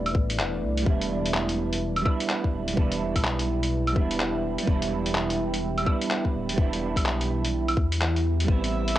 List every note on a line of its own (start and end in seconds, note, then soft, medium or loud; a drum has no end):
0.00 0.14 E1 medium
0.00 0.11 G3 medium
0.00 0.86 A3 medium
0.00 0.12 B3 medium
0.00 0.13 C4 medium
0.00 0.14 E4 loud
0.00 0.85 E4 medium
0.00 8.48 B4 medium
0.00 2.34 D5 medium
0.06 closed hi-hat soft
0.06 claves medium
0.15 0.41 A1 medium
0.15 kick loud
0.30 closed hi-hat medium
0.39 0.64 E1 medium
0.39 clap loud
0.63 0.85 C2 medium
0.77 closed hi-hat soft
0.82 2.00 G3 medium
0.82 2.02 B3 medium
0.86 2.04 E1 medium
0.86 2.04 D4 medium
0.86 8.99 E4 medium
0.86 2.05 E4 loud
0.86 kick loud
1.01 8.99 E5 medium
1.01 closed hi-hat soft
1.26 closed hi-hat soft
1.34 clap loud
1.49 closed hi-hat soft
1.73 closed hi-hat soft
1.96 closed hi-hat soft
1.96 claves medium
2.02 2.72 G3 medium
2.02 2.74 B3 medium
2.02 claves medium
2.06 2.75 D4 medium
2.06 2.77 E4 medium
2.06 kick loud
2.20 8.99 G5 medium
2.20 closed hi-hat soft
2.29 clap medium
2.44 kick medium
2.53 2.76 D1 loud
2.68 closed hi-hat soft
2.73 3.91 G3 medium
2.73 3.93 B3 medium
2.77 3.17 E1 medium
2.77 3.94 D4 medium
2.77 3.96 E4 loud
2.77 kick loud
2.92 closed hi-hat soft
3.16 3.95 B1 medium
3.16 kick medium
3.16 closed hi-hat soft
3.16 claves soft
3.25 clap loud
3.39 closed hi-hat soft
3.63 closed hi-hat soft
3.87 closed hi-hat soft
3.87 claves medium
3.92 4.57 E1 medium
3.92 4.62 G3 medium
3.92 4.64 B3 medium
3.92 kick medium
3.97 4.66 D4 medium
3.97 4.67 E4 medium
4.11 closed hi-hat medium
4.20 clap medium
4.58 closed hi-hat medium
4.63 5.81 G3 medium
4.63 5.83 B3 medium
4.67 5.85 E1 loud
4.67 5.85 D4 medium
4.67 5.86 E4 loud
4.67 kick loud
4.82 closed hi-hat soft
5.06 closed hi-hat soft
5.15 clap loud
5.30 closed hi-hat soft
5.54 closed hi-hat medium
5.78 closed hi-hat soft
5.78 claves medium
5.82 6.52 G3 medium
5.82 6.54 B3 medium
5.86 6.56 D4 medium
5.86 6.58 E4 medium
5.86 kick medium
5.86 claves medium
6.01 closed hi-hat soft
6.10 clap medium
6.25 kick medium
6.34 6.57 D1 loud
6.49 closed hi-hat medium
6.53 7.72 G3 medium
6.53 7.74 B3 medium
6.58 6.98 E1 loud
6.58 7.75 D4 medium
6.58 7.76 E4 loud
6.58 kick loud
6.73 closed hi-hat soft
6.96 7.76 B1 medium
6.96 kick medium
6.96 closed hi-hat medium
6.96 claves soft
7.06 clap medium
7.21 closed hi-hat soft
7.45 closed hi-hat medium
7.68 closed hi-hat soft
7.68 claves medium
7.77 8.47 E2 medium
7.77 kick medium
7.92 closed hi-hat medium
8.01 clap loud
8.16 closed hi-hat soft
8.40 closed hi-hat medium
8.44 8.99 G3 medium
8.44 8.99 B3 medium
8.48 8.99 A1 medium
8.48 8.99 A3 medium
8.48 8.99 C4 medium
8.48 8.99 E4 loud
8.48 8.99 E5 medium
8.48 kick loud
8.64 closed hi-hat soft
8.88 closed hi-hat medium